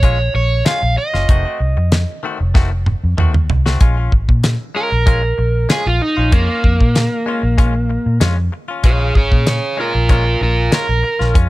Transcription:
Already playing: A#1 C#5
0.03 G#3 C#4 F4, kick, closed hi-hat
0.34 A#1 C#5, muted clean electric guitar stroke
0.65 G#3 C#4 F4 F5, snare, closed hi-hat
0.83 A#1, muted clean electric guitar stroke
0.97 D#5, muted clean electric guitar stroke
1.14 F#1 C#4 F4, snare
1.29 F1 D#3 A3 C4 F#4, kick, closed hi-hat
1.45 A3 C4 F#4
1.60 C2, muted clean electric guitar stroke
1.77 F2, muted clean electric guitar stroke
1.92 muted clean electric guitar stroke, snare, closed hi-hat
2.23 D#3 A3 C4 F#4
2.38 F1 C#5
2.54 D#3 A3 C4 F#4, kick, snare
2.71 muted clean electric guitar stroke
2.86 muted clean electric guitar stroke, mid tom
3.04 F2
3.18 D#2 D#3 A3 C4 F#4, mid tom
3.34 muted clean electric guitar stroke, mid tom
3.50 C2, muted clean electric guitar stroke, floor tom
3.66 A3 C4 F#4, snare
3.81 A#1 G#3 C#4 F4, kick, closed hi-hat
3.97 C#4 F4
4.12 G#1, muted clean electric guitar stroke, kick
4.29 A#2, muted clean electric guitar stroke, kick
4.44 muted clean electric guitar stroke, snare, closed hi-hat
4.75 G#3 C#4 F4 A#4
4.91 A#1, muted clean electric guitar stroke
5.06 G#3 C#4 F4, kick, closed hi-hat
5.23 muted clean electric guitar stroke
5.38 A#1, muted clean electric guitar stroke
5.69 G#3 C#4 F4 G#4, snare, closed hi-hat
5.85 A#1 F4, muted clean electric guitar stroke
6.01 D#4, muted clean electric guitar stroke
6.17 A#1 C#4 F4
6.32 F2 G#3 A#3 C#4 F4, kick, closed hi-hat
6.48 C#4 F4
6.64 F2, muted clean electric guitar stroke, kick
6.80 A#2, muted clean electric guitar stroke, kick
6.95 muted clean electric guitar stroke, snare, closed hi-hat
7.26 G#3 C#4 F4
7.43 A#1
7.58 G#3 C#4 F4, kick, closed hi-hat
7.75 muted clean electric guitar stroke
7.90 muted clean electric guitar stroke
8.06 A#2
8.20 F2 G#3 C#4 F4, snare, closed hi-hat
8.37 muted clean electric guitar stroke
8.52 muted clean electric guitar stroke
8.68 C#4 F4
8.84 A#1 G#3 C#4 F4 G#4 C#5, kick, closed hi-hat
9.00 C#4 F4
9.15 G#1 G#4 C#5, muted clean electric guitar stroke, kick
9.31 A#2, muted clean electric guitar stroke, kick
9.46 G#4 C#5, muted clean electric guitar stroke, snare, closed hi-hat
9.77 G#3 C#4 F4 A#4
9.94 A#1, muted clean electric guitar stroke
10.09 G#3 C#4 F4 A#4, kick, closed hi-hat
10.41 A#1 F4 A#4, muted clean electric guitar stroke
10.72 G#3 C#4 F4 A#4, snare, closed hi-hat
10.88 A#1, muted clean electric guitar stroke
11.03 muted clean electric guitar stroke
11.19 A#1 C#4 F4, snare
11.34 F2 G#3 C#4 F4, kick, closed hi-hat

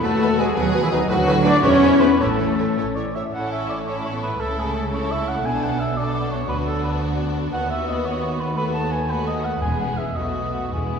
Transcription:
0.03 D#2 B2 F#3 A3 B3 F#4 A4 B4 A5
0.21 B2 B4
0.39 B2 G#3 G#4 B4 G#5
0.56 D#2 B2 F#3 B3 F#4 G#4 B4 F#5
0.74 B2 B4
0.83 E3 E4 E5
0.91 B2 D#3 D#4 B4 D#5
1.08 D2 A2 F#3 B3 F#4 B4 F#5
1.27 A2 B4
1.44 A2 D4 B4 D5 D6
1.63 E2 G#2 E3 B3 C#4 E4 B4 C#5 C#6
1.82 G#2 B4
2.00 G#2 B3 B4 B5
2.19 A1 A2 E3 A3 C#4 A4 C#5 A5
2.40 A2 C#5
2.58 A2 C#5
2.77 A1 A2 A4 C#5
2.95 A2 C#5 D5
3.15 A2 C#5 E5
3.34 A1 A2 C#4 E4 A4 F#5
3.51 E5
3.69 D5
3.87 C#4 E4 A4 C#5
4.05 C#5
4.13 B3
4.23 B4
4.39 C#2 C#3 A3 E4 A4
4.59 G#4
4.76 A4
4.92 A3 E4 A4 C#5
5.11 E5
5.28 F#5
5.44 B1 B2 B3 D4 A4 G#5
5.63 F#5
5.80 E5
5.97 B3 D4 A4 D5
6.14 D5
6.31 C#5
6.49 D2 B3 D4 F#4 B4
6.67 A4
6.83 B4
7.52 D#2 B3 F#4 F#5
7.70 E5
7.88 D#5
8.05 C#5
8.22 C#5
8.40 B4
8.56 A3 B3 F#4 B4
8.75 A5
8.92 G#5
9.08 A3 B3 F#4 B4
9.27 D#5
9.44 F#5
9.61 E1 E2 G#3 B3 G#4 G#5
9.80 F#5
9.97 E5
10.16 B1 B2 A3 B3 F#4 D#5
10.53 F#4
10.72 E1 E2 G#3 B3 E4 G#4

